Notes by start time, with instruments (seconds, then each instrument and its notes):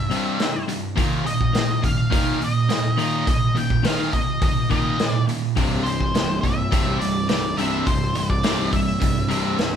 Already playing: lead electric guitar E5
0.11 distorted electric guitar C2 G2 C3, open hi-hat
0.40 distorted electric guitar C2 G2, snare, open hi-hat
0.68 distorted electric guitar C2 G2, open hi-hat
0.96 distorted electric guitar D#2 A#2 D#3, kick, open hi-hat
1.25 distorted electric guitar D#2 A#2, lead electric guitar D#5, open hi-hat
1.41 kick
1.54 distorted electric guitar D#2 A#2, snare, open hi-hat
1.82 distorted electric guitar D#2 A#2, lead electric guitar F5, kick, open hi-hat
2.10 distorted electric guitar D#2 A#2 D#3, kick, open hi-hat
2.40 distorted electric guitar D#2 A#2, lead electric guitar D#5, open hi-hat
2.69 distorted electric guitar D#2 A#2, snare, open hi-hat
2.98 distorted electric guitar D#2 A#2 D#3, lead electric guitar D#5, open hi-hat
3.26 distorted electric guitar D#2 A#2, lead electric guitar D#5, kick, open hi-hat
3.55 distorted electric guitar D#2 A#2, lead electric guitar G5, open hi-hat
3.70 kick
3.84 distorted electric guitar D#2 A#2 D#3, lead electric guitar F5, snare, open hi-hat
4.12 distorted electric guitar D#2 A#2, lead electric guitar D#5, kick, open hi-hat
4.42 distorted electric guitar D#2 A#2, lead electric guitar D#5, kick, open hi-hat
4.70 distorted electric guitar D#2 A#2 D#3, lead electric guitar D#5, kick, open hi-hat
4.99 distorted electric guitar D#2 A#2, snare, open hi-hat
5.09 lead electric guitar D5
5.29 distorted electric guitar D#2 A#2, open hi-hat
5.56 picked electric bass C1, distorted electric guitar C2 G2 C3, kick, open hi-hat
5.83 picked electric bass C1, distorted electric guitar C2 G2, lead electric guitar C5, open hi-hat
6.00 kick
6.14 picked electric bass C1, distorted electric guitar C2 G2, snare, open hi-hat
6.41 picked electric bass C1, distorted electric guitar C2 G2, lead electric guitar E5, kick, open hi-hat
6.71 picked electric bass C1, distorted electric guitar C2 G2 C3, kick, open hi-hat
7.00 picked electric bass C1, distorted electric guitar C2 G2, lead electric guitar D5, open hi-hat
7.29 picked electric bass C1, distorted electric guitar C2 G2, lead electric guitar D5, snare, open hi-hat
7.57 picked electric bass C1, distorted electric guitar C2 G2 C3, lead electric guitar E5, open hi-hat
7.86 picked electric bass C1, distorted electric guitar C2 G2, lead electric guitar C5, kick, open hi-hat
8.15 picked electric bass C1, distorted electric guitar C2 G2, open hi-hat
8.29 lead electric guitar D5, kick
8.43 picked electric bass C1, distorted electric guitar C2 G2 C3, snare, open hi-hat
8.72 distorted electric guitar C2 G2, lead electric guitar E5, kick, open hi-hat
9.00 picked electric bass C1, distorted electric guitar C2 G2, kick, open hi-hat
9.29 picked electric bass C1, distorted electric guitar C2 G2 C3, open hi-hat
9.58 picked electric bass C1, distorted electric guitar C2 G2, snare, open hi-hat